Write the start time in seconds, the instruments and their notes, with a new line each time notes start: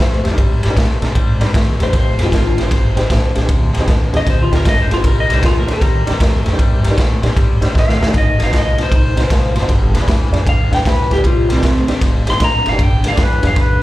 Already playing: electric slide guitar C5
0.00 upright bass F2, clean electric guitar C3 A3, snare
0.24 upright bass F2, clean electric guitar C3 A3, tonewheel organ G4 C5, snare, ride
0.31 tonewheel organ D4 D#4 G4 A#4
0.38 upright bass G#2, clean electric guitar C3 G3, kick, ride
0.63 upright bass G#2, clean electric guitar C3 G3, tonewheel organ G4 A#4, snare, ride
0.70 tonewheel organ D4 D#4 G4 A#4
0.76 upright bass A#2, clean electric guitar C3 A3, kick, snare, ride
1.01 upright bass A#2, clean electric guitar C3 A3, tonewheel organ D4 D#4 G4 A#4, snare, ride
1.15 upright bass G#2, clean electric guitar C3 G3, kick, ride
1.40 upright bass G#2, clean electric guitar C3 G3, tonewheel organ D4 D#4 G4 A#4, snare, ride
1.53 upright bass D#2, clean electric guitar C3 A3, kick, snare, ride
1.78 upright bass E2, clean electric guitar C3 A3, tonewheel organ G4 A#4, snare, ride
1.83 tonewheel organ D4 D#4 G4 A#4, electric slide guitar C5
1.92 upright bass F1, clean electric guitar F2 C3, kick, snare, ride
1.98 electric slide guitar C5
2.18 upright bass F1, clean electric guitar F2 C3, tonewheel organ G4 G#4, snare, ride
2.23 tonewheel organ C4 D#4 G4 G#4, electric slide guitar F4
2.32 upright bass G#1, clean electric guitar F2 D3, kick, snare, ride
2.38 electric slide guitar F4
2.57 clean electric guitar F2 D3, tonewheel organ C4 D#4 G4 G#4, snare, ride
2.63 electric slide guitar C5
2.70 upright bass G#1, clean electric guitar F2 C3, kick, snare, ride
2.96 upright bass G#1, clean electric guitar F2 C3, tonewheel organ C4 D#4 G4 G#4, snare, ride
3.10 upright bass A#1, clean electric guitar F2 D3, kick, snare, ride
3.35 upright bass A#1, clean electric guitar F2 D3, tonewheel organ G4 G#4, snare, ride
3.43 tonewheel organ C4 D#4 G4 G#4
3.48 upright bass D2, clean electric guitar F2 C3, kick, ride
3.73 upright bass D2, clean electric guitar F2 C3, tonewheel organ G4 G#4, snare, ride
3.80 tonewheel organ C4 D#4 G4 G#4
3.87 upright bass D#2, clean electric guitar F2 D3, kick, snare, ride
4.13 upright bass D#2, clean electric guitar F2 D3, tonewheel organ C4 D#4 G4 G#4, electric slide guitar D#5, snare, ride
4.26 upright bass D2, clean electric guitar F2 C3, electric slide guitar C5, kick, snare, ride
4.42 electric slide guitar F4
4.51 upright bass D2, clean electric guitar F2 C3, tonewheel organ C4 D#4 G4 G#4, snare, ride
4.55 electric slide guitar A#4
4.65 upright bass G#1, clean electric guitar F2 D3, electric slide guitar D#5, kick, snare, ride
4.82 electric slide guitar C5
4.90 upright bass G#1, clean electric guitar F2 D3, electric slide guitar F4, tonewheel organ G4 G#4, snare, ride
4.97 tonewheel organ C4 D#4 G4 G#4
5.04 upright bass C2, clean electric guitar C3 G3, electric slide guitar A#4, kick, ride
5.20 electric slide guitar D#5
5.29 upright bass C2, clean electric guitar C3 G3, tonewheel organ G4 A#4, snare, ride
5.33 tonewheel organ D4 D#4 G4 A#4, electric slide guitar C5
5.43 upright bass D#2, clean electric guitar C3 A3, electric slide guitar F4, kick, snare, ride
5.59 electric slide guitar A#4
5.67 clean electric guitar C3 A3, tonewheel organ D4 D#4 G4 C5, snare, ride
5.72 electric slide guitar A#4
5.80 upright bass D#2, clean electric guitar C3 G3, kick, snare, ride
6.06 upright bass D#2, clean electric guitar C3 G3, tonewheel organ D4 D#4 G4 A#4, snare, ride
6.20 upright bass F2, clean electric guitar C3 A3, kick, snare, ride
6.45 upright bass F2, clean electric guitar C3 A3, tonewheel organ G4 A#4, snare, ride
6.53 tonewheel organ D4 D#4 G4 C5
6.58 upright bass G#2, clean electric guitar C3 G3, kick, ride
6.83 upright bass G#2, clean electric guitar C3 G3, tonewheel organ G4 A#4, snare, ride
6.91 tonewheel organ D4 D#4 G4 A#4
6.97 upright bass A#2, clean electric guitar C3 A3, kick, snare, ride
7.22 upright bass A#2, clean electric guitar C3 A3, tonewheel organ D4 D#4 G4 A#4, snare, ride
7.36 upright bass G#2, clean electric guitar C3 G3, kick, snare, ride
7.61 upright bass G#2, clean electric guitar C3 G3, tonewheel organ D4 D#4 G4 C5, snare, ride
7.74 upright bass D#2, clean electric guitar C3 A3, kick, snare
7.79 electric slide guitar F5
7.89 snare
8.00 upright bass D#2, clean electric guitar C3 A3, tonewheel organ G4 A#4, snare
8.07 tonewheel organ D4 D#4 G4 A#4
8.14 upright bass G#1, clean electric guitar G#2 D#3, kick, snare, ride
8.18 electric slide guitar D#5
8.39 upright bass G#1, clean electric guitar G#2 D#3, tonewheel organ F#4 A#4, snare, ride
8.43 tonewheel organ C4 D#4 F#4 A#4, electric slide guitar F5
8.52 upright bass C2, clean electric guitar G#2 F3, kick, snare, ride
8.58 electric slide guitar D#5
8.77 clean electric guitar G#2 F3, tonewheel organ C4 D#4 F#4 A#4, snare, ride
8.83 electric slide guitar C5
8.91 upright bass C2, clean electric guitar G#2 D#3, kick, ride
8.96 electric slide guitar C5
9.16 upright bass C2, clean electric guitar G#2 D#3, tonewheel organ C4 D#4 F#4 C5, snare, ride
9.30 upright bass C2, clean electric guitar G#2 F3, kick, snare, ride
9.55 upright bass F#1, clean electric guitar G#2 F3, tonewheel organ F#4 C5, snare, ride
9.62 tonewheel organ C4 D#4 F#4 C5
9.69 upright bass G1, clean electric guitar G2 D3, kick, snare, ride
9.93 upright bass D#2, clean electric guitar G2 D3, tonewheel organ G#4 B4, snare, ride
10.00 tonewheel organ D4 F4 G#4 B4
10.07 upright bass F2, clean electric guitar G2 E3, kick, snare, ride
10.32 upright bass F2, clean electric guitar G2 E3, tonewheel organ D4 F4 G#4 D5, snare, ride
10.46 upright bass D#2, clean electric guitar G2 D3, electric slide guitar F5, kick, snare, ride
10.71 upright bass D#2, clean electric guitar G2 D3, tonewheel organ D4 F4 G#4 B4, electric slide guitar G5, snare, ride
10.85 upright bass B1, clean electric guitar G2 E3, electric slide guitar B4, kick, snare, ride
11.10 upright bass D2, clean electric guitar G2 E3, electric slide guitar G4, tonewheel organ G#4 D5, snare, ride
11.17 tonewheel organ D4 F4 G#4 B4
11.23 upright bass C2, clean electric guitar C3 G3, electric slide guitar F4, kick, ride
11.49 upright bass C2, clean electric guitar C3 G3, electric slide guitar C4, tonewheel organ G4 A#4, snare, ride
11.55 tonewheel organ D4 D#4 G4 A#4
11.62 upright bass D#2, clean electric guitar C3 A3, kick, snare, ride
11.88 clean electric guitar C3 A3, tonewheel organ D4 D#4 G4 C5, snare, ride
12.01 upright bass F1, clean electric guitar F2 C3, kick, snare, ride
12.26 upright bass G#1, clean electric guitar F2 C3, tonewheel organ D#4 G4 G#4 C5, electric slide guitar C6, snare, ride
12.40 upright bass A#1, clean electric guitar F2 D3, kick, snare, ride
12.44 electric slide guitar A#5
12.65 upright bass G#1, clean electric guitar F2 D3, tonewheel organ G#4 C5, electric slide guitar F5, snare, ride
12.72 tonewheel organ D#4 G4 G#4 D5
12.79 upright bass G1, clean electric guitar G2 D3, kick, ride
12.83 electric slide guitar G5
13.04 upright bass D#2, clean electric guitar G2 D3, tonewheel organ G#4 B4, snare, ride
13.08 tonewheel organ D4 F4 G#4, electric slide guitar F5
13.12 tonewheel organ D5
13.17 upright bass F2, clean electric guitar G2 E3, kick, snare, ride
13.22 electric slide guitar B4
13.43 upright bass F2, clean electric guitar G2 E3, tonewheel organ D4 F4 G#4 B4, snare, ride
13.47 electric slide guitar F5
13.56 upright bass D#2, clean electric guitar G2 D3, kick, snare, ride
13.61 electric slide guitar B4